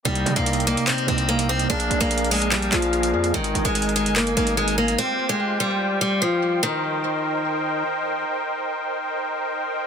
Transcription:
0.05 808-style bass C2, tine electric piano C3 A#3 D#4, steel-string acoustic guitar G3, accordion C4 G4 A#4 D#5, closed hi-hat
0.15 closed hi-hat
0.26 808-style bass C3, closed hi-hat
0.36 808-style bass C2, steel-string acoustic guitar A#3, closed hi-hat
0.46 closed hi-hat
0.53 closed hi-hat
0.60 closed hi-hat
0.67 steel-string acoustic guitar A#3, closed hi-hat
0.77 closed hi-hat
0.87 steel-string acoustic guitar C4, clap, closed hi-hat
0.98 closed hi-hat
1.06 808-style bass C2, tine electric piano C3 A#3 D#4, steel-string acoustic guitar C4, closed hi-hat
1.18 closed hi-hat
1.29 steel-string acoustic guitar A#3, closed hi-hat
1.39 closed hi-hat
1.49 steel-string acoustic guitar C4
1.59 closed hi-hat
1.69 808-style bass A#1, tine electric piano A#3 G#4 D5, accordion D4 G#4 A#4 F5, steel-string acoustic guitar D4, closed hi-hat
1.80 closed hi-hat
1.90 808-style bass A#1, closed hi-hat
2.00 808-style bass A#1, steel-string acoustic guitar A#3, closed hi-hat
2.11 closed hi-hat
2.18 closed hi-hat
2.24 closed hi-hat
2.31 steel-string acoustic guitar G#3, open hi-hat
2.42 closed hi-hat
2.51 steel-string acoustic guitar G3, clap, closed hi-hat
2.62 closed hi-hat
2.71 808-style bass A#1, steel-string acoustic guitar F3, tine electric piano A#3 G#4 D5, clap, closed hi-hat
2.82 closed hi-hat
2.93 closed hi-hat
3.03 closed hi-hat
3.12 808-style bass F2, tine electric piano A#3 G#4 D5
3.24 closed hi-hat
3.33 808-style bass G#1, steel-string acoustic guitar D#3, tine electric piano G#3 D#4 A#4, accordion D#4 G#5, closed hi-hat
3.44 closed hi-hat
3.55 808-style bass G#1, closed hi-hat
3.65 808-style bass G#1, steel-string acoustic guitar G#3, closed hi-hat
3.75 closed hi-hat
3.82 closed hi-hat
3.89 closed hi-hat
3.96 steel-string acoustic guitar G#3, closed hi-hat
4.06 808-style bass G1, closed hi-hat
4.16 steel-string acoustic guitar A#3, clap, closed hi-hat
4.27 closed hi-hat
4.36 808-style bass G#1, tine electric piano G#3 D#4 A#4, steel-string acoustic guitar A#3, closed hi-hat
4.47 closed hi-hat
4.57 steel-string acoustic guitar G#3, closed hi-hat
4.68 closed hi-hat
4.78 steel-string acoustic guitar A#3
4.88 closed hi-hat
4.98 steel-string acoustic guitar C4, accordion F4 G4 C5 G5, closed hi-hat
5.29 steel-string acoustic guitar G#3
5.60 steel-string acoustic guitar G3
6.01 steel-string acoustic guitar G3
6.22 steel-string acoustic guitar F3
6.63 steel-string acoustic guitar D#3, accordion D#4 A#4 C5 G5

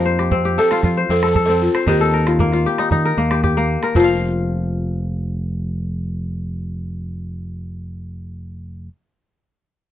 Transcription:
Already playing: fingered electric bass F2, kora F3 A#3 D#4 F4 G4 A#4, balafon C5
0.05 kora C5
0.19 kora G4, calabash click
0.31 kora C4, calabash thump
0.45 kora G4
0.58 kora A4, balafon A4
0.71 kora F4, calabash click
0.83 fingered electric bass F3, kora F4, calabash thump, calabash click
0.97 kora C5
1.09 fingered electric bass F2, kora C4, balafon A4, calabash click
1.23 kora A4, calabash click
1.27 balafon A4
1.35 kora A4, calabash thump
1.46 kora C4, balafon A4, calabash click
1.62 balafon F4
1.75 kora C5, calabash click
1.87 fingered electric bass D#2, kora D#3, balafon G4, calabash thump, calabash click
2.01 kora A4
2.14 kora A#4
2.27 kora F4, calabash click
2.39 kora A#3, calabash thump
2.52 kora F4, calabash click
2.66 kora G4
2.78 kora D#4, calabash click
2.91 fingered electric bass D#3, kora D#4, calabash thump
3.05 kora A#4
3.17 fingered electric bass D#2, kora A#3, calabash click
3.31 kora G4, calabash click
3.44 kora G4, calabash thump, calabash click
3.57 kora A#3
3.83 kora A#4, calabash click
3.95 fingered electric bass F1, kora F3, balafon F4, calabash thump
4.00 kora F4
4.04 kora F5

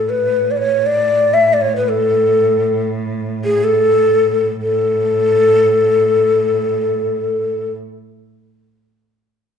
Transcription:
Already playing: cello A2, ney A4
0.09 ney B4
0.51 ney D5
0.57 ney C#5
0.86 ney D5
1.34 ney E5
1.53 ney D5
1.61 ney C#5
1.76 ney B4
1.89 ney A4
3.44 ney G#4
3.64 ney A4
4.62 cello A2, ney A4

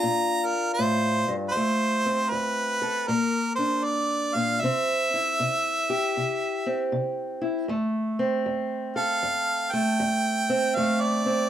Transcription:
Already playing: steel-string acoustic guitar A#3 D4 F4, harmonica A#5
0.03 steel-string acoustic guitar A#2
0.47 harmonica A#4
0.74 harmonica C5
0.79 steel-string acoustic guitar A2
1.28 steel-string acoustic guitar G2
1.49 harmonica B4 C5
1.56 steel-string acoustic guitar F2 A3
2.06 steel-string acoustic guitar C4
2.29 steel-string acoustic guitar F2, harmonica B4
2.82 steel-string acoustic guitar A4
3.08 steel-string acoustic guitar A#2 A#3, harmonica A#4
3.56 steel-string acoustic guitar D4, harmonica C5
3.84 harmonica D5
4.35 steel-string acoustic guitar A#2, harmonica F5
4.61 steel-string acoustic guitar C3 C4, harmonica E5
5.14 steel-string acoustic guitar E4
5.40 steel-string acoustic guitar C3
5.90 steel-string acoustic guitar G4
6.17 steel-string acoustic guitar C3
6.66 steel-string acoustic guitar C4
6.92 steel-string acoustic guitar C3
7.41 steel-string acoustic guitar E4
7.68 steel-string acoustic guitar F2 A3
8.19 steel-string acoustic guitar C4
8.46 steel-string acoustic guitar F2
8.96 steel-string acoustic guitar A4, harmonica F5
9.23 steel-string acoustic guitar F2
9.73 steel-string acoustic guitar A3, harmonica G5
10.00 steel-string acoustic guitar F2
10.50 steel-string acoustic guitar C4
10.76 steel-string acoustic guitar F2 A3, harmonica F5
11.01 harmonica D5
11.26 steel-string acoustic guitar C4

